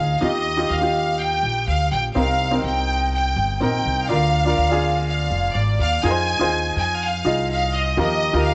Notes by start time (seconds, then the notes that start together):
Already playing: D2 D#4 F4 G#4 A#4 F5
0.21 D#2 D#3 D#4 F4 G4 D#5
0.57 D#4 F4 G4
0.70 D#2 F5
0.81 D#4 F4 G4
1.20 G5
1.43 A#1
1.67 D2 F5
1.92 A#1 G5
2.15 C2 C3 C4 D#4 A#4 F5
2.51 C4 D#4 A#4
2.64 C2 G5
3.14 G5
3.36 G1
3.60 A#1 C4 D#4 A#4 G5
3.86 C2
4.08 D2 D3 D4 F4 A#4 F5
4.45 D4 F4 A#4
4.58 D2
4.70 D4 F4 G#4
5.08 F5
5.31 F1
5.55 G#1 D5
5.79 D#2 F5
6.03 F2 D#4 F4 G#4 A#4 G#5
6.11 C5
6.39 D#2 D#4 F4 G#4 C5
6.76 F2 G#5
7.02 F5
7.25 C2 D#4 F4 G#4 D#5
7.50 F5
7.75 D#5
7.97 D#2 F3 D#4 F4 G4 A#4 D#5
8.33 D2 D#4 F4 G4 A#4
8.47 F5